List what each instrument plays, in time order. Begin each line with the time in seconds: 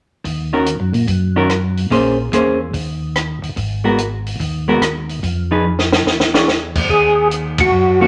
0.24 tonewheel organ D#2, kick, open hi-hat
0.53 hollow-body jazz guitar D#3 C#4 F#4 A#4
0.66 closed hi-hat
0.80 tonewheel organ F#2
0.93 tonewheel organ A#2, open hi-hat
1.08 tonewheel organ F#2, kick, open hi-hat
1.36 hollow-body jazz guitar D#3 C#4 F#4 A#4
1.50 cross-stick, closed hi-hat
1.77 open hi-hat
1.90 tonewheel organ A#1, hollow-body jazz guitar A#3 C#4 G#4 C5, kick, open hi-hat
2.32 tonewheel organ E2, hollow-body jazz guitar A#3 C#4 G#4 C5, closed hi-hat
2.73 tonewheel organ D#2, kick, open hi-hat
3.16 cross-stick, closed hi-hat
3.42 tonewheel organ D#2, open hi-hat
3.56 tonewheel organ G#1, kick, open hi-hat
3.84 hollow-body jazz guitar G#3 B3 F#4 A#4
3.98 closed hi-hat
4.27 open hi-hat
4.40 tonewheel organ D#2, kick, open hi-hat
4.68 hollow-body jazz guitar G#3 B3 F#4 A#4
4.80 tonewheel organ D#2, cross-stick, closed hi-hat
5.09 open hi-hat
5.23 tonewheel organ F2, kick, open hi-hat
5.51 hollow-body jazz guitar F3 D#4 G#4 B4
5.79 snare
5.92 snare
6.05 tonewheel organ E2, snare
6.20 snare
6.34 hollow-body jazz guitar E3 D4 G#4 C#5, snare
6.48 snare
6.75 kick, crash
6.89 tonewheel organ D#2 G#4, kick
7.31 closed hi-hat
7.58 tonewheel organ F#4, kick, ride
7.71 tonewheel organ F#2
8.00 hollow-body jazz guitar D#3 A#3 C#4 F#4, tonewheel organ F#4